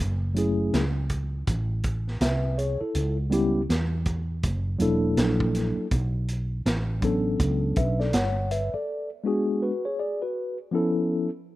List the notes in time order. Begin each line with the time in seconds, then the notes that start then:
0.00 F#1
0.34 F#3 A3 C#4 E4 G#4, closed hi-hat
0.73 C#2, snare, closed hi-hat
1.09 kick, closed hi-hat
1.47 A1, kick, closed hi-hat
1.83 kick, closed hi-hat
2.07 snare
2.21 C2 B4 E5, snare, closed hi-hat
2.58 G#4 C#5, closed hi-hat
2.81 E4 A4, muted fretless electric bass stroke
2.95 C#2, closed hi-hat
3.30 G3 B3 C#4 E4 G4, closed hi-hat
3.69 E2, snare, closed hi-hat
4.05 kick, closed hi-hat
4.43 F#1, kick, closed hi-hat
4.79 E1 F#3 A#3 D4 E4 A4, closed hi-hat
5.17 A#1, snare, closed hi-hat
5.40 kick
5.55 snare, closed hi-hat
5.77 muted fretless electric bass stroke
5.91 B1, kick, closed hi-hat
6.28 closed hi-hat
6.66 A1, snare, closed hi-hat
7.01 F#3 B3 C#4 D4 A4, kick, closed hi-hat
7.39 C#2, kick, closed hi-hat
7.76 B1 B4 E5, kick, closed hi-hat
8.00 A4 D5, snare
8.13 G1 C#5 F#5, snare, closed hi-hat
8.51 B4 E5, closed hi-hat
8.74 A4 D5, muted fretless electric bass stroke
9.24 G#3 B3 D4 F#4 G#4
9.62 F#4 B4
9.85 G#4 C#5
9.99 G#4 D5
10.22 F#4 B4
10.71 F3 B3 C#4 E4 A4